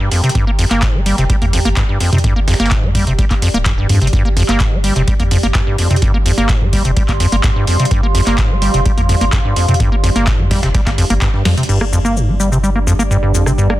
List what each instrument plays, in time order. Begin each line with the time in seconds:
Already playing: ambient pad G4 D5 G5 A#5
0.11 acid bass F2, closed hi-hat, open hi-hat
0.24 acid bass C3, closed hi-hat
0.29 closed hi-hat
0.35 sub bass G1, acid bass G2, kick, closed hi-hat
0.47 acid bass A#3
0.59 acid bass F2, closed hi-hat, open hi-hat
0.71 sub bass G1, acid bass A#3, snare, clap, closed hi-hat
0.82 acid bass G2, kick, snare, clap, closed hi-hat
0.94 acid bass A#3
1.06 acid bass G3, closed hi-hat, open hi-hat
1.18 sub bass F1, acid bass C3, snare, closed hi-hat
1.30 acid bass G3, kick, closed hi-hat
1.42 sub bass G1, acid bass A#3, closed hi-hat, mid tom
1.53 acid bass F2, closed hi-hat, mid tom, open hi-hat
1.65 sub bass G1, acid bass A#3, closed hi-hat
1.77 acid bass G2, kick, snare, clap, closed hi-hat
1.89 acid bass G2
2.00 acid bass F2, closed hi-hat, open hi-hat
2.13 acid bass C3, closed hi-hat, mid tom
2.18 closed hi-hat
2.24 sub bass G1, acid bass G2, kick, closed hi-hat
2.36 acid bass A#3
2.48 acid bass F2, snare, closed hi-hat, open hi-hat
2.54 snare, closed hi-hat
2.60 sub bass G1, acid bass A#3, snare, closed hi-hat
2.66 snare, closed hi-hat
2.71 acid bass G2, kick, snare, clap, closed hi-hat
2.83 acid bass A#3, mid tom
2.95 acid bass G3, kick, closed hi-hat, mid tom, open hi-hat
3.07 sub bass F1, acid bass C3, closed hi-hat
3.18 acid bass G3, kick, closed hi-hat
3.31 acid bass A#3, kick, clap, closed hi-hat
3.42 acid bass F2, closed hi-hat, open hi-hat
3.54 sub bass D1, acid bass A#3, closed hi-hat
3.66 acid bass G2, kick, snare, clap, closed hi-hat
3.78 acid bass G2
3.89 acid bass F2, sub bass G2, closed hi-hat, open hi-hat
4.01 sub bass G1, acid bass C3, closed hi-hat
4.07 closed hi-hat
4.13 sub bass G1, acid bass G2, kick, closed hi-hat
4.25 acid bass A#3
4.37 acid bass F2, closed hi-hat, open hi-hat
4.49 sub bass G1, acid bass A#3, snare, clap, closed hi-hat
4.60 acid bass G2, kick, snare, clap, closed hi-hat
4.72 acid bass A#3
4.84 acid bass G3, closed hi-hat, open hi-hat
4.96 sub bass F1, acid bass C3, snare, closed hi-hat
5.08 acid bass G3, kick, closed hi-hat
5.20 sub bass G1, acid bass A#3, closed hi-hat, mid tom
5.31 acid bass F2, closed hi-hat, mid tom, open hi-hat
5.43 sub bass G1, acid bass A#3, closed hi-hat
5.55 acid bass G2, kick, snare, clap, closed hi-hat
5.66 acid bass G2, ambient pad C6
5.78 acid bass F2, closed hi-hat, open hi-hat
5.91 acid bass C3, closed hi-hat, mid tom
5.96 closed hi-hat
6.02 sub bass G1, acid bass G2, ambient pad F5, kick, closed hi-hat
6.14 acid bass A#3
6.26 acid bass F2, closed hi-hat, open hi-hat
6.38 sub bass G1, acid bass A#3, snare, closed hi-hat
6.49 acid bass G2, kick, snare, clap, closed hi-hat
6.61 acid bass A#3, mid tom
6.73 acid bass G3, kick, closed hi-hat, open hi-hat
6.85 sub bass F1, acid bass C3, closed hi-hat
6.97 acid bass G3, kick, closed hi-hat
7.08 sub bass G1, acid bass A#3, kick, clap, closed hi-hat
7.20 acid bass F2, closed hi-hat, open hi-hat
7.32 sub bass G1, acid bass A#3, closed hi-hat
7.44 acid bass G2, kick, snare, clap, closed hi-hat
7.56 acid bass G2
7.67 acid bass F2, closed hi-hat, open hi-hat
7.79 acid bass C3, closed hi-hat
7.85 closed hi-hat
7.91 sub bass G1, acid bass G2, kick, closed hi-hat
8.03 acid bass A#3
8.15 acid bass F2, closed hi-hat, open hi-hat
8.27 sub bass G1, acid bass A#3, snare, clap, closed hi-hat
8.38 acid bass G2, kick, snare, clap, closed hi-hat
8.50 acid bass A#3
8.62 acid bass G3, closed hi-hat, open hi-hat
8.74 sub bass F1, acid bass C3, snare, closed hi-hat
8.85 acid bass G3, kick, closed hi-hat
8.97 sub bass G1, acid bass A#3, closed hi-hat, mid tom
9.09 acid bass F2, closed hi-hat, mid tom, open hi-hat
9.21 sub bass G1, acid bass A#3, closed hi-hat
9.33 acid bass G2, kick, snare, clap, closed hi-hat
9.45 acid bass G2
9.56 acid bass F2, closed hi-hat, open hi-hat
9.68 acid bass C3, closed hi-hat, mid tom
9.74 closed hi-hat
9.80 sub bass G1, acid bass G2, kick, closed hi-hat
9.92 acid bass A#3
10.03 acid bass F2, closed hi-hat, open hi-hat
10.16 sub bass G1, acid bass A#3, snare, closed hi-hat
10.27 acid bass G2, kick, snare, clap, closed hi-hat
10.39 acid bass A#3, mid tom
10.51 acid bass G3, kick, snare, closed hi-hat, mid tom, open hi-hat
10.63 sub bass F1, acid bass C3, snare, closed hi-hat
10.74 acid bass G3, kick, snare, closed hi-hat
10.86 sub bass G1, acid bass A#3, kick, snare, clap, closed hi-hat
10.98 acid bass F2, closed hi-hat, open hi-hat
11.10 sub bass G1, acid bass A#3, closed hi-hat
11.22 acid bass G2, kick, clap, closed hi-hat
11.34 acid bass G2, snare
11.45 acid bass F2, snare, closed hi-hat, mid tom, open hi-hat
11.57 acid bass C3, closed hi-hat
11.63 closed hi-hat
11.69 sub bass G1, acid bass G2, ambient pad G4, analog synth pad D5, crash, shaker
11.81 acid bass A#3, cross-stick
11.93 acid bass F2, ambient pad A#5, shaker
12.05 acid bass A#3, ambient pad G5, shaker
12.16 acid bass G2, ambient pad D5, shaker
12.28 acid bass A#3
12.40 acid bass G3, shaker
12.52 acid bass C3, shaker
12.63 acid bass G3, shaker
12.75 acid bass A#3
12.87 acid bass F2, shaker
12.99 acid bass A#3, shaker
13.11 acid bass G2, shaker
13.23 acid bass G2
13.34 acid bass F2, shaker
13.46 acid bass C3, cross-stick, shaker
13.58 acid bass G2, shaker
13.70 acid bass A#3, cross-stick